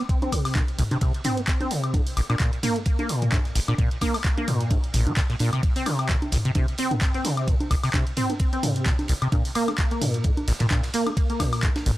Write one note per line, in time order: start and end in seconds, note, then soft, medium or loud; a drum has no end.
0.09 kick loud
0.09 closed hi-hat medium
0.09 ride medium
0.22 0.34 C4 medium
0.22 closed hi-hat soft
0.22 high conga medium
0.32 0.57 C3 medium
0.32 kick medium
0.32 open hi-hat loud
0.32 ride medium
0.32 high woodblock medium
0.45 snare soft
0.45 open hi-hat medium
0.45 high woodblock medium
0.55 0.62 A#2 medium
0.55 kick loud
0.55 snare loud
0.55 clap loud
0.55 closed hi-hat medium
0.55 ride medium
0.55 high conga medium
0.68 closed hi-hat soft
0.79 0.83 C2 loud
0.79 open hi-hat loud
0.79 mid tom medium
0.79 ride medium
0.91 0.97 C3 loud
0.91 closed hi-hat soft
0.91 high conga medium
1.01 1.12 C3 medium
1.01 kick loud
1.01 closed hi-hat medium
1.01 ride medium
1.14 closed hi-hat soft
1.24 1.39 C4 loud
1.24 open hi-hat loud
1.24 mid tom medium
1.24 ride medium
1.24 high conga medium
1.37 1.41 A#3 loud
1.37 closed hi-hat soft
1.47 kick loud
1.47 snare loud
1.47 clap loud
1.47 closed hi-hat medium
1.47 ride medium
1.60 1.72 C4 medium
1.60 snare soft
1.60 closed hi-hat soft
1.60 high conga medium
1.71 1.95 C3 medium
1.71 open hi-hat loud
1.71 ride medium
1.84 closed hi-hat soft
1.84 high woodblock medium
1.94 2.01 G#2 medium
1.94 kick loud
1.94 closed hi-hat medium
1.94 ride medium
1.94 high conga medium
2.07 open hi-hat medium
2.17 2.21 A#1 loud
2.17 open hi-hat loud
2.17 ride medium
2.17 high woodblock medium
2.29 2.35 A#2 loud
2.29 snare soft
2.29 closed hi-hat soft
2.29 high conga medium
2.29 high woodblock medium
2.39 2.51 A#2 medium
2.39 kick loud
2.39 snare loud
2.39 clap loud
2.39 closed hi-hat medium
2.39 ride medium
2.53 closed hi-hat soft
2.63 2.77 A#3 loud
2.63 open hi-hat loud
2.63 mid tom medium
2.63 ride medium
2.63 high conga medium
2.76 2.79 G#3 loud
2.76 closed hi-hat soft
2.86 kick loud
2.86 closed hi-hat medium
2.86 ride medium
2.99 3.11 A#3 medium
2.99 closed hi-hat soft
2.99 high conga medium
3.09 3.34 A#2 medium
3.09 open hi-hat loud
3.09 ride medium
3.22 closed hi-hat soft
3.22 mid tom medium
3.32 3.39 G#2 medium
3.32 kick loud
3.32 snare loud
3.32 clap loud
3.32 closed hi-hat medium
3.32 ride medium
3.32 high conga medium
3.45 snare soft
3.45 closed hi-hat soft
3.55 3.60 A#1 loud
3.55 snare soft
3.55 open hi-hat loud
3.55 ride medium
3.67 3.74 A#2 loud
3.67 snare soft
3.67 closed hi-hat soft
3.67 high conga medium
3.67 high woodblock medium
3.78 3.89 A#2 medium
3.78 kick loud
3.78 closed hi-hat medium
3.78 ride medium
3.91 closed hi-hat soft
4.01 4.16 A#3 loud
4.01 kick medium
4.01 open hi-hat loud
4.01 ride medium
4.01 high conga medium
4.01 high woodblock medium
4.14 4.18 G#3 loud
4.14 snare soft
4.14 open hi-hat medium
4.14 high woodblock medium
4.24 kick loud
4.24 snare loud
4.24 clap loud
4.24 closed hi-hat medium
4.24 ride medium
4.37 4.49 A#3 medium
4.37 closed hi-hat soft
4.37 high conga medium
4.48 4.72 A#2 medium
4.48 open hi-hat loud
4.48 mid tom medium
4.48 ride medium
4.61 closed hi-hat soft
4.71 4.78 G#2 medium
4.71 kick loud
4.71 closed hi-hat medium
4.71 ride medium
4.71 high conga medium
4.84 closed hi-hat soft
4.94 5.08 A#1 medium
4.94 open hi-hat loud
4.94 mid tom medium
4.94 ride medium
5.07 5.12 A#3 medium
5.07 closed hi-hat soft
5.07 high conga medium
5.17 5.21 A#2 medium
5.17 kick loud
5.17 snare loud
5.17 clap loud
5.17 closed hi-hat medium
5.17 ride medium
5.30 5.35 A#2 medium
5.30 snare soft
5.30 closed hi-hat soft
5.39 5.51 A#2 loud
5.39 open hi-hat loud
5.39 ride medium
5.39 high conga medium
5.53 5.61 C3 medium
5.53 closed hi-hat soft
5.53 high woodblock medium
5.63 kick loud
5.63 closed hi-hat medium
5.63 ride medium
5.76 5.88 C4 medium
5.76 open hi-hat medium
5.86 6.11 C3 medium
5.86 open hi-hat loud
5.86 ride medium
5.86 high conga medium
5.86 high woodblock medium
5.99 snare soft
5.99 closed hi-hat soft
5.99 high woodblock medium
6.09 6.16 A#2 medium
6.09 kick loud
6.09 snare loud
6.09 clap loud
6.09 closed hi-hat medium
6.09 ride medium
6.22 closed hi-hat soft
6.22 high conga medium
6.32 6.37 C2 loud
6.32 open hi-hat loud
6.32 mid tom medium
6.32 ride medium
6.45 6.51 C3 loud
6.45 closed hi-hat soft
6.55 6.66 C3 medium
6.55 kick loud
6.55 closed hi-hat medium
6.55 ride medium
6.55 high conga medium
6.68 closed hi-hat soft
6.78 6.93 C4 loud
6.78 open hi-hat loud
6.78 ride medium
6.91 6.95 A#3 loud
6.91 closed hi-hat soft
6.91 mid tom medium
6.91 high conga medium
7.01 kick loud
7.01 snare loud
7.01 clap loud
7.01 closed hi-hat medium
7.01 ride medium
7.14 7.26 C4 medium
7.14 snare soft
7.14 closed hi-hat soft
7.25 7.49 C3 medium
7.25 snare soft
7.25 open hi-hat loud
7.25 ride medium
7.25 high conga medium
7.37 snare soft
7.37 closed hi-hat soft
7.37 high woodblock medium
7.48 7.55 A#2 medium
7.48 kick loud
7.48 closed hi-hat medium
7.48 ride medium
7.60 closed hi-hat soft
7.60 high conga medium
7.71 7.75 C2 loud
7.71 kick medium
7.71 open hi-hat loud
7.71 ride medium
7.71 high woodblock medium
7.83 7.89 C3 loud
7.83 snare soft
7.83 open hi-hat medium
7.83 high woodblock medium
7.94 8.04 C3 medium
7.94 kick loud
7.94 snare loud
7.94 clap loud
7.94 closed hi-hat medium
7.94 ride medium
7.94 high conga medium
8.07 closed hi-hat soft
8.17 8.31 C4 loud
8.17 open hi-hat loud
8.17 mid tom medium
8.17 ride medium
8.30 8.33 A#3 loud
8.30 closed hi-hat medium
8.30 high conga medium
8.39 kick loud
8.39 closed hi-hat medium
8.39 ride medium
8.53 8.65 C4 medium
8.53 closed hi-hat soft
8.63 8.88 C3 medium
8.63 open hi-hat loud
8.63 mid tom medium
8.63 ride medium
8.63 high conga medium
8.76 closed hi-hat medium
8.86 8.93 A#2 medium
8.86 kick loud
8.86 snare loud
8.86 clap loud
8.86 closed hi-hat medium
8.86 ride medium
8.99 snare soft
8.99 closed hi-hat soft
8.99 high conga medium
9.08 9.13 C2 loud
9.08 open hi-hat loud
9.08 ride medium
9.22 9.28 C3 loud
9.22 closed hi-hat soft
9.22 high woodblock medium
9.32 9.43 A#2 medium
9.32 kick loud
9.32 closed hi-hat medium
9.32 ride medium
9.32 high conga medium
9.45 open hi-hat medium
9.55 9.70 A#3 loud
9.55 open hi-hat loud
9.55 ride medium
9.55 high woodblock medium
9.68 9.72 G#3 loud
9.68 snare soft
9.68 closed hi-hat medium
9.68 high conga medium
9.68 high woodblock medium
9.78 kick loud
9.78 snare loud
9.78 clap loud
9.78 closed hi-hat medium
9.78 ride loud
9.91 10.03 A#3 medium
9.91 closed hi-hat soft
10.02 10.26 A#2 medium
10.02 open hi-hat loud
10.02 mid tom medium
10.02 ride medium
10.02 high conga medium
10.14 closed hi-hat soft
10.24 10.32 G#2 medium
10.24 kick loud
10.24 closed hi-hat medium
10.24 ride medium
10.37 closed hi-hat soft
10.37 high conga medium
10.48 10.52 A#1 loud
10.48 snare loud
10.48 open hi-hat loud
10.48 ride medium
10.59 10.66 A#2 loud
10.59 snare loud
10.59 closed hi-hat medium
10.59 mid tom medium
10.59 ride medium
10.70 10.81 A#2 medium
10.70 kick loud
10.70 snare loud
10.70 clap loud
10.70 closed hi-hat medium
10.70 ride medium
10.70 high conga medium
10.83 snare loud
10.83 closed hi-hat soft
10.83 ride medium
10.93 11.08 A#3 loud
10.93 snare soft
10.93 open hi-hat medium
10.93 ride medium
11.07 11.10 G#3 loud
11.07 snare soft
11.07 closed hi-hat medium
11.07 high conga medium
11.07 high woodblock medium
11.17 kick loud
11.17 closed hi-hat medium
11.17 ride medium
11.30 11.42 A#3 medium
11.30 closed hi-hat soft
11.40 11.65 A#2 medium
11.40 kick medium
11.40 snare medium
11.40 open hi-hat loud
11.40 ride medium
11.40 high conga medium
11.40 high woodblock medium
11.52 snare soft
11.52 open hi-hat medium
11.52 high woodblock medium
11.63 11.70 G#2 medium
11.63 kick loud
11.63 clap loud
11.63 closed hi-hat medium
11.63 ride medium
11.76 snare loud
11.76 closed hi-hat soft
11.76 ride medium
11.76 high conga medium
11.86 11.90 A#1 loud
11.86 snare soft
11.86 open hi-hat loud
11.86 mid tom medium